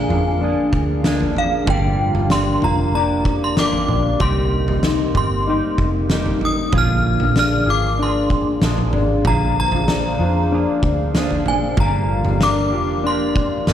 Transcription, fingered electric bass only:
0.09 F2
0.73 D2
1.68 G1
2.15 G1
2.62 F1
3.58 G1
3.89 A#1
4.20 C2
5.15 G1
5.78 F1
6.73 A#1
7.20 A#1
7.67 G#1
8.62 A#1
8.93 G#1
9.25 A#1
10.19 F2
10.83 D2
11.78 G1
12.25 G1
12.73 F1
13.67 G1

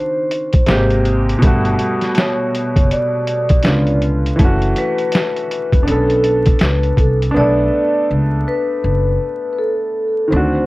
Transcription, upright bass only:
0.69 G#1
1.43 G1
2.77 F#1
3.66 C#2
4.39 F#1
5.73 E1
5.88 B1
6.62 C#2
6.98 C2
7.36 B1
8.10 C#2
8.84 F#1
10.32 D2

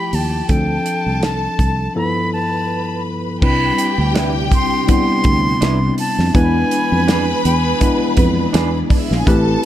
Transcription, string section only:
Already playing: G4 G5
0.50 A4 A5
1.96 B4 B5
3.42 G4 G5
6.34 B4 B5
8.90 D4 D5
8.99 E4 E5
9.10 F4 F5
9.19 G#4 G#5
9.27 A4 A5

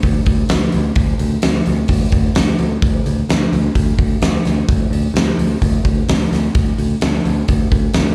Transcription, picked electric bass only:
0.04 D2
0.27 D2
0.51 D2
0.74 D2
0.96 D2
1.20 D2
1.44 D2
1.67 D2
1.89 D2
2.13 D2
2.37 D2
2.60 D2
2.83 D2
3.06 D2
3.29 D2
3.52 D2
3.76 D2
3.99 D2
4.22 D2
4.45 D2
4.69 D2
4.91 D2
5.14 D2
5.38 D2
5.62 D2
5.85 D2
6.09 D2
6.31 D2
6.55 D2
6.78 D2
7.02 D2
7.26 D2
7.49 D2
7.72 D2
7.96 D2

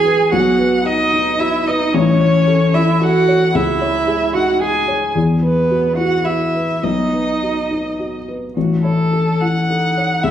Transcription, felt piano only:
Already playing: E2 E4 F#4 B4
0.05 B4
0.33 B1
0.59 B4
0.85 F#4
1.13 D#4
1.40 F#4
1.67 B4
1.94 A1
2.20 C#5
2.48 A4
2.75 E4
3.02 A4
3.28 C#5
3.55 C#2
3.81 C#5
4.08 G#4
4.35 D#4
4.61 G#4
4.88 C#5
5.15 E2
5.43 B4
5.71 F#4
5.97 E4
6.26 F#4
6.55 B4
6.83 B1
7.13 B4
7.43 F#4
7.71 D#4
7.99 F#4
8.28 B4
8.57 A1
8.85 C#5
9.13 A4
9.42 E4
9.70 A4
9.97 C#5
10.24 C#2

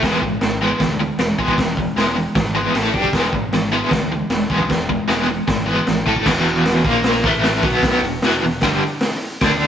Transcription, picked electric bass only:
0.03 E1
0.21 G#1
0.41 G#1
0.80 D2
1.18 E1
1.39 B1
1.57 E1
1.96 E1
2.35 G#1
2.73 A1
2.93 G1
3.14 E1
3.33 G#1
3.51 G#1
3.91 D2
4.29 E1
4.50 B1
4.69 E1
5.09 E1
5.48 G#1
5.87 G#1
6.07 A1
6.26 E1
6.85 A#1
7.24 A1
7.64 B1
8.02 E1
8.22 E1
8.43 E1
8.62 G1
9.42 D2

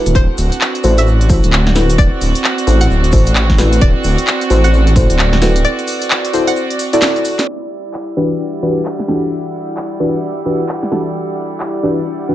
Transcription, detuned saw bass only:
0.06 D1
0.15 D1
0.38 D1
0.84 A1
1.44 D1
2.21 D1
2.67 A1
2.90 D1
3.13 A1
3.81 D1
4.04 D1
4.50 A1
5.10 D1

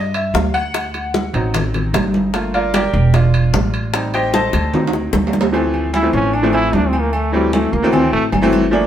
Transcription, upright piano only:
Already playing: D#5
0.15 E5
0.35 F5
0.54 F#5
1.33 F#3 C4 D#4
2.34 A3 A#3 F4
2.54 F4 A#4 D5 F5
2.74 G4 A#4 D5 G5
3.14 G#3 D4 F4
3.93 G3 C4 D#4
4.14 G4 C5 D#5 G5
4.34 A4 C5 D#5 A5
4.73 F#3 C4 D#4
5.52 E3 F3 A3 C4
6.02 E3 F3 A3 C4
6.42 E3 F3 A3 C4
6.52 E3 F3 A3 C4
7.32 E3 F#3 A3 C4
7.82 E3 F#3 A3 C4
8.42 E3 F#3 A3 C4
8.71 F3 A3 A#3 D4

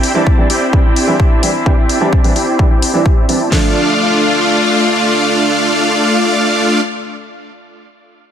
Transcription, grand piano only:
0.14 E3 G3 C4 D4
0.38 E3 G3 C4 D4
0.73 E3 G3 C4 D4
1.07 E3 G3 C4 D4
1.42 E3 G3 C4 D4
1.66 E3 G3 C4 D4
2.00 E3 G3 C4 D4
2.24 E3 G3 C4 D4
2.59 E3 G3 C4 D4
2.93 E3 G3 C4 D4
3.28 E3 G3 C4 D4
3.50 D3 F3 A3 D4

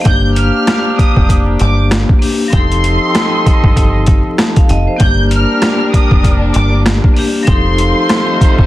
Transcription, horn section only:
0.06 A#3 D4 G4
2.52 C4 A4 D#5
5.00 G3 D4 A#4
7.48 A3 F4 C5

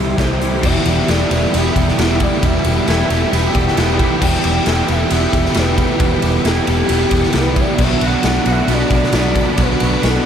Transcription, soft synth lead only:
Already playing: E5
0.19 C5
0.66 E5
1.09 D5
1.56 E5
1.99 E5
2.22 D5
2.44 E5
2.89 E5
4.23 G5
4.91 E5
5.15 E5
5.58 B4
6.01 B4
6.46 G4
7.39 B4
7.60 D5
7.83 E5
8.06 F#5
8.51 E5
8.73 D5
8.96 D5
9.18 D5
9.62 B4
10.07 A4

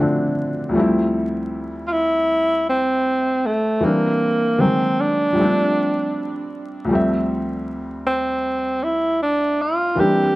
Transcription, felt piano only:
Already playing: D3
0.00 F3 A3 C4 D4
0.69 D2 F3
0.73 G3 A3 C4
0.79 E4
3.80 E3 G3 A#3 C4
3.85 D4
4.58 D#3 F#3 G#3 A#3
5.32 F3 G3
5.38 A3 C4
5.43 D4
6.85 D2 F3
6.89 G3 A3 C4
6.95 E5
9.96 E3 G3 A#3 C4
10.01 D4

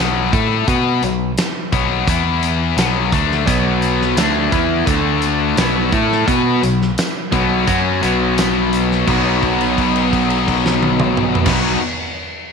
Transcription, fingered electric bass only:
0.00 B1
0.33 A2
0.68 B2
1.02 B1
1.73 B1
2.07 E2
2.77 B1
3.13 D2
3.47 B1
4.17 D2
4.52 E2
4.87 D2
5.57 B1
5.93 A2
6.28 B2
6.63 B1
7.33 B1
7.68 F#2
8.03 B1
9.08 B1
11.46 B1

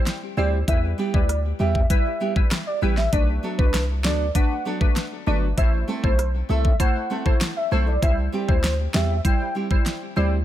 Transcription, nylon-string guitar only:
0.37 G3 C4 E4 G4
0.98 G3 B3 E4 G4
1.59 G3 B3 E4 G4
2.20 G3 B3 E4 G4
2.36 muted nylon-string guitar stroke
2.81 G3 B3 E4 G4
2.97 muted nylon-string guitar stroke
3.43 F#3 B3 D4 A4
4.04 F#3 B3 D4 A4
4.65 F#3 B3 D4 A4
4.81 muted nylon-string guitar stroke
5.26 F#3 B3 D4 A4
5.88 A3 C4 E4 A4
6.49 A3 C4 E4 A4
7.10 A3 C4 E4 A4
7.25 muted nylon-string guitar stroke
7.71 A3 C4 E4 A4
7.87 muted nylon-string guitar stroke
8.32 G3 C4 E4 G4
8.94 G3 C4 E4 G4
9.55 G3 C4 E4 G4
9.70 muted nylon-string guitar stroke
10.16 G3 C4 E4 G4

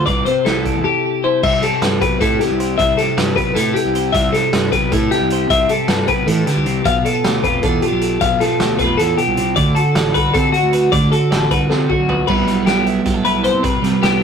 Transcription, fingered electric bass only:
0.07 C2
0.27 C3
0.46 C2
0.76 E2
1.43 C2
1.82 G2
2.01 B1
2.21 A2
2.50 C2
2.79 C2
3.17 G2
3.38 B1
3.56 A2
3.85 C2
4.15 C2
4.53 G2
4.73 B1
4.92 A2
5.20 C2
5.50 C2
5.89 G2
6.08 B1
6.27 A2
6.56 C2
6.85 B1
7.24 D2
7.44 F1
7.63 E2
7.92 B1
8.21 B1
8.60 D2
8.79 F1
8.98 E2
9.27 C2
9.57 D2
9.95 A1
10.15 C2
10.35 C3
10.63 D2
10.93 D2
11.31 A1
11.51 C2
11.70 C3
11.99 B1
12.29 C2
12.47 B1
13.06 B1
13.54 C3
13.83 C3
14.03 C2

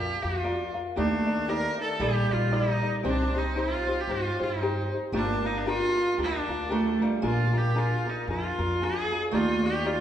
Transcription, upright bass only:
Already playing: F2
0.24 F2
0.97 D#2
2.00 A#1
2.31 A#1
3.05 C2
4.08 G2
4.40 G2
5.12 G1
6.18 D2
6.48 D2
7.23 A#1
8.28 F2
8.59 F2
9.32 D#2

